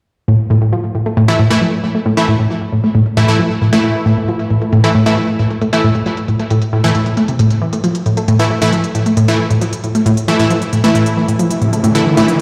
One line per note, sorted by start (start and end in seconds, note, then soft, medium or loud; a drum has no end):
0.28 0.34 A2 loud
0.28 closed hi-hat medium
0.39 closed hi-hat medium
0.50 0.56 A2 loud
0.62 0.67 A2 medium
0.62 closed hi-hat medium
0.72 0.76 F3 medium
0.72 closed hi-hat medium
0.84 closed hi-hat medium
0.95 1.00 A2 medium
0.95 closed hi-hat soft
1.06 1.12 A3 medium
1.06 closed hi-hat medium
1.17 1.23 A2 loud
1.17 closed hi-hat medium
1.28 1.34 E3 medium
1.28 1.34 A3 medium
1.28 1.34 E4 loud
1.39 1.45 A2 loud
1.50 1.56 A2 medium
1.50 1.59 E3 loud
1.50 1.59 A3 medium
1.50 1.59 E4 loud
1.61 1.65 F3 medium
1.61 closed hi-hat medium
1.73 closed hi-hat medium
1.84 1.89 A2 medium
1.84 closed hi-hat medium
1.95 2.00 A3 medium
1.95 closed hi-hat medium
2.06 2.12 A2 loud
2.06 closed hi-hat medium
2.17 2.26 E3 medium
2.17 2.26 A3 medium
2.17 2.26 E4 medium
2.17 closed hi-hat medium
2.28 2.34 A2 loud
2.39 2.45 A2 medium
2.39 closed hi-hat medium
2.50 2.54 F3 medium
2.50 closed hi-hat medium
2.61 closed hi-hat medium
2.72 2.78 A2 medium
2.72 closed hi-hat soft
2.84 2.89 A3 medium
2.84 closed hi-hat medium
2.95 3.00 A2 loud
2.95 closed hi-hat medium
3.06 closed hi-hat medium
3.17 3.23 A2 loud
3.17 3.26 E3 medium
3.17 3.26 A3 medium
3.17 3.26 E4 medium
3.28 3.34 A2 medium
3.28 3.37 E3 medium
3.28 3.37 A3 medium
3.28 3.37 E4 loud
3.39 3.43 F3 medium
3.39 closed hi-hat medium
3.50 closed hi-hat medium
3.61 3.67 A2 medium
3.61 closed hi-hat medium
3.73 4.81 E3 medium
3.73 4.81 A3 medium
3.73 3.78 A3 medium
3.73 4.81 E4 loud
3.73 closed hi-hat medium
3.84 3.89 A2 loud
3.84 closed hi-hat medium
3.95 closed hi-hat medium
4.06 4.12 A2 loud
4.17 4.23 A2 medium
4.17 closed hi-hat medium
4.28 4.32 F3 medium
4.28 closed hi-hat medium
4.39 closed hi-hat medium
4.50 4.56 A2 medium
4.50 closed hi-hat soft
4.62 4.67 A3 medium
4.62 closed hi-hat medium
4.73 4.78 A2 loud
4.73 closed hi-hat medium
4.84 4.89 E3 medium
4.84 4.89 A3 medium
4.84 4.89 E4 loud
4.84 closed hi-hat medium
4.95 5.00 A2 loud
5.06 5.12 A2 medium
5.06 5.15 E3 loud
5.06 5.15 A3 medium
5.06 5.15 E4 loud
5.06 closed hi-hat medium
5.17 5.20 F3 medium
5.17 closed hi-hat medium
5.28 closed hi-hat medium
5.39 5.45 A2 medium
5.39 closed hi-hat medium
5.51 5.56 A3 medium
5.51 closed hi-hat medium
5.62 5.67 A2 loud
5.62 closed hi-hat medium
5.73 5.81 E3 medium
5.73 5.81 A3 medium
5.73 5.81 E4 medium
5.84 5.89 A2 loud
5.95 6.01 A2 medium
5.95 closed hi-hat soft
6.06 6.09 F3 medium
6.06 closed hi-hat soft
6.17 closed hi-hat medium
6.28 6.34 A2 medium
6.28 closed hi-hat soft
6.39 6.45 A3 medium
6.39 closed hi-hat medium
6.50 6.56 A2 loud
6.50 closed hi-hat medium
6.62 closed hi-hat medium
6.73 6.78 A2 loud
6.84 6.89 A2 medium
6.84 6.89 E3 medium
6.84 6.89 A3 medium
6.84 6.89 E4 loud
6.84 closed hi-hat medium
6.95 7.01 A2 medium
6.95 closed hi-hat medium
7.06 7.12 A2 medium
7.06 closed hi-hat soft
7.17 7.21 A3 medium
7.17 closed hi-hat medium
7.28 7.34 C3 medium
7.28 closed hi-hat medium
7.39 7.45 A2 loud
7.39 closed hi-hat medium
7.50 closed hi-hat soft
7.62 7.67 E3 medium
7.73 7.78 A2 medium
7.73 closed hi-hat soft
7.84 7.87 F3 medium
7.84 closed hi-hat soft
7.95 closed hi-hat medium
8.06 8.12 A2 medium
8.06 closed hi-hat soft
8.17 8.23 A3 medium
8.17 closed hi-hat soft
8.28 8.34 A2 loud
8.28 closed hi-hat medium
8.39 8.45 E3 medium
8.39 8.45 A3 medium
8.39 8.45 E4 loud
8.39 closed hi-hat soft
8.50 8.56 E3 medium
8.62 8.67 A2 medium
8.62 8.70 E3 medium
8.62 8.70 A3 medium
8.62 8.70 E4 loud
8.62 closed hi-hat medium
8.73 8.76 F3 medium
8.73 closed hi-hat medium
8.84 closed hi-hat soft
8.95 9.00 A2 medium
8.95 closed hi-hat medium
9.06 9.12 A3 medium
9.06 closed hi-hat soft
9.17 9.23 A2 loud
9.17 closed hi-hat medium
9.28 9.37 E3 medium
9.28 9.37 A3 medium
9.28 9.37 E4 medium
9.28 closed hi-hat soft
9.39 9.45 E3 medium
9.51 9.56 A2 medium
9.51 closed hi-hat soft
9.61 9.65 F3 medium
9.61 closed hi-hat medium
9.73 closed hi-hat medium
9.84 9.89 A2 medium
9.84 closed hi-hat soft
9.95 10.00 A3 medium
9.95 closed hi-hat medium
10.06 10.12 A2 loud
10.06 closed hi-hat medium
10.17 closed hi-hat medium
10.28 10.34 E3 medium
10.28 10.37 E3 medium
10.28 10.37 A3 medium
10.28 10.37 E4 medium
10.39 10.45 A2 medium
10.39 10.48 E3 medium
10.39 10.48 A3 medium
10.39 10.48 E4 loud
10.39 closed hi-hat soft
10.50 10.54 F3 medium
10.50 closed hi-hat medium
10.62 closed hi-hat soft
10.73 10.78 A2 medium
10.73 closed hi-hat medium
10.84 11.92 E3 loud
10.84 10.89 A3 medium
10.84 11.92 A3 medium
10.84 11.92 E4 loud
10.84 closed hi-hat medium
10.95 11.00 A2 loud
10.95 closed hi-hat medium
10.95 riser medium
11.06 closed hi-hat medium
11.17 11.23 E3 medium
11.28 11.34 A2 medium
11.28 closed hi-hat medium
11.39 11.43 F3 medium
11.39 closed hi-hat soft
11.51 closed hi-hat medium
11.62 11.67 A2 medium
11.62 closed hi-hat soft
11.73 11.78 A3 medium
11.73 closed hi-hat medium
11.84 11.89 A2 loud
11.84 closed hi-hat medium
11.95 12.00 E3 medium
11.95 12.00 A3 medium
11.95 12.00 E4 loud
11.95 closed hi-hat medium
12.06 12.12 E3 medium
12.17 12.23 A2 medium
12.17 12.26 E3 loud
12.17 12.26 A3 medium
12.17 12.26 E4 loud
12.17 closed hi-hat medium
12.28 12.32 F3 medium
12.28 closed hi-hat medium